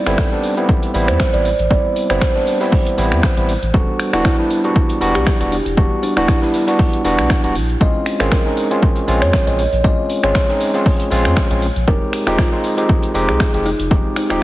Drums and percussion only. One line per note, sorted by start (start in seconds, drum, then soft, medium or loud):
0.07 finger snap medium
0.07 snare medium
0.07 closed hi-hat medium
0.07 shaker soft
0.18 finger snap loud
0.18 kick loud
0.18 snare loud
0.18 shaker medium
0.18 shaker soft
0.43 open hi-hat medium
0.43 shaker medium
0.57 closed hi-hat medium
0.57 shaker soft
0.69 kick loud
0.69 shaker medium
0.69 shaker soft
0.83 closed hi-hat soft
0.83 closed hi-hat medium
0.94 open hi-hat loud
0.94 shaker medium
1.08 finger snap medium
1.08 closed hi-hat medium
1.08 shaker soft
1.20 finger snap loud
1.20 kick loud
1.20 snare loud
1.20 shaker medium
1.20 shaker soft
1.34 closed hi-hat medium
1.45 open hi-hat medium
1.45 shaker medium
1.59 closed hi-hat medium
1.59 closed hi-hat soft
1.59 shaker soft
1.71 kick loud
1.71 shaker medium
1.71 shaker soft
1.96 open hi-hat loud
1.96 shaker medium
2.10 finger snap medium
2.10 closed hi-hat medium
2.10 shaker soft
2.21 finger snap loud
2.21 kick loud
2.21 snare loud
2.21 shaker medium
2.21 shaker soft
2.36 snare medium
2.47 snare soft
2.47 open hi-hat medium
2.47 shaker medium
2.61 snare soft
2.61 closed hi-hat medium
2.61 shaker soft
2.72 kick loud
2.72 open hi-hat medium
2.72 shaker soft
2.86 closed hi-hat medium
2.86 closed hi-hat soft
2.97 snare soft
2.97 open hi-hat loud
2.97 shaker medium
3.12 finger snap medium
3.12 snare soft
3.12 closed hi-hat medium
3.12 shaker soft
3.23 finger snap loud
3.23 kick loud
3.23 snare loud
3.23 shaker medium
3.23 shaker soft
3.37 closed hi-hat soft
3.49 open hi-hat loud
3.49 shaker medium
3.63 closed hi-hat medium
3.63 shaker soft
3.74 kick loud
3.74 shaker medium
3.74 shaker soft
3.99 finger snap medium
3.99 open hi-hat loud
3.99 shaker medium
4.13 finger snap medium
4.13 snare medium
4.13 closed hi-hat medium
4.13 shaker soft
4.25 finger snap loud
4.25 kick loud
4.25 snare loud
4.25 shaker medium
4.25 shaker soft
4.50 open hi-hat loud
4.50 shaker medium
4.64 closed hi-hat medium
4.64 shaker soft
4.75 kick loud
4.75 shaker medium
4.75 shaker soft
4.89 closed hi-hat soft
5.01 open hi-hat loud
5.01 shaker medium
5.15 finger snap medium
5.15 closed hi-hat medium
5.15 shaker soft
5.26 finger snap loud
5.26 kick loud
5.26 snare loud
5.26 shaker medium
5.26 shaker soft
5.41 closed hi-hat medium
5.52 open hi-hat loud
5.52 shaker medium
5.66 closed hi-hat soft
5.66 closed hi-hat medium
5.66 shaker soft
5.77 kick loud
5.77 shaker medium
5.77 shaker soft
6.03 open hi-hat loud
6.03 shaker medium
6.17 finger snap medium
6.17 closed hi-hat medium
6.17 shaker soft
6.28 finger snap loud
6.28 kick loud
6.28 snare loud
6.28 shaker medium
6.28 shaker soft
6.42 snare medium
6.53 snare soft
6.53 open hi-hat medium
6.53 shaker medium
6.55 shaker medium
6.67 snare soft
6.67 closed hi-hat medium
6.67 shaker soft
6.79 kick loud
6.79 open hi-hat medium
6.79 shaker soft
6.93 closed hi-hat soft
7.05 snare soft
7.05 open hi-hat loud
7.05 shaker medium
7.19 finger snap medium
7.19 snare soft
7.19 closed hi-hat medium
7.19 shaker soft
7.30 finger snap loud
7.30 kick loud
7.30 snare loud
7.30 shaker medium
7.30 shaker soft
7.44 closed hi-hat soft
7.55 open hi-hat medium
7.55 shaker medium
7.69 closed hi-hat medium
7.69 shaker soft
7.81 kick loud
7.81 shaker medium
7.81 shaker soft
8.06 finger snap medium
8.06 open hi-hat loud
8.06 shaker medium
8.20 finger snap medium
8.20 snare medium
8.20 closed hi-hat medium
8.20 shaker soft
8.32 finger snap loud
8.32 kick loud
8.32 snare loud
8.32 shaker medium
8.32 shaker soft
8.57 open hi-hat medium
8.57 shaker medium
8.71 closed hi-hat medium
8.71 shaker soft
8.83 kick loud
8.83 shaker medium
8.83 shaker soft
8.96 closed hi-hat soft
9.08 open hi-hat loud
9.08 shaker medium
9.22 finger snap medium
9.22 closed hi-hat medium
9.22 shaker soft
9.33 finger snap loud
9.33 kick loud
9.33 snare loud
9.33 shaker medium
9.33 shaker soft
9.47 closed hi-hat soft
9.59 open hi-hat medium
9.59 shaker medium
9.73 closed hi-hat medium
9.73 closed hi-hat soft
9.73 shaker soft
9.84 kick loud
9.84 shaker medium
9.84 shaker soft
10.10 open hi-hat loud
10.10 shaker medium
10.23 finger snap medium
10.23 closed hi-hat medium
10.23 shaker soft
10.35 finger snap loud
10.35 kick loud
10.35 snare loud
10.35 shaker medium
10.35 shaker soft
10.49 snare medium
10.60 snare soft
10.60 open hi-hat medium
10.60 shaker medium
10.74 snare soft
10.74 closed hi-hat medium
10.74 shaker soft
10.86 kick loud
10.86 open hi-hat medium
10.86 shaker soft
11.00 closed hi-hat soft
11.00 closed hi-hat medium
11.11 snare medium
11.11 open hi-hat loud
11.11 shaker medium
11.25 finger snap medium
11.25 snare soft
11.25 closed hi-hat medium
11.25 shaker soft
11.36 finger snap loud
11.36 kick loud
11.36 snare loud
11.36 shaker medium
11.36 shaker soft
11.51 closed hi-hat medium
11.62 open hi-hat medium
11.62 shaker medium
11.76 closed hi-hat medium
11.76 shaker soft
11.88 kick loud
11.88 shaker medium
11.88 shaker soft
12.13 finger snap medium
12.13 open hi-hat loud
12.13 shaker medium
12.27 finger snap medium
12.27 snare medium
12.27 closed hi-hat medium
12.27 shaker soft
12.38 finger snap loud
12.38 kick loud
12.38 snare loud
12.38 shaker medium
12.38 shaker soft
12.64 open hi-hat medium
12.64 shaker medium
12.78 closed hi-hat medium
12.78 shaker soft
12.89 kick loud
12.89 shaker medium
12.89 shaker soft
13.03 closed hi-hat soft
13.03 closed hi-hat medium
13.15 open hi-hat loud
13.15 shaker medium
13.29 finger snap medium
13.29 closed hi-hat medium
13.29 shaker soft
13.40 finger snap loud
13.40 kick loud
13.40 snare loud
13.40 shaker medium
13.40 shaker soft
13.54 closed hi-hat medium
13.65 open hi-hat medium
13.65 shaker medium
13.79 closed hi-hat medium
13.79 closed hi-hat soft
13.79 shaker soft
13.91 kick loud
13.91 shaker medium
13.91 shaker soft
14.16 finger snap medium
14.16 open hi-hat loud
14.16 shaker medium
14.30 finger snap medium
14.30 closed hi-hat medium
14.30 shaker soft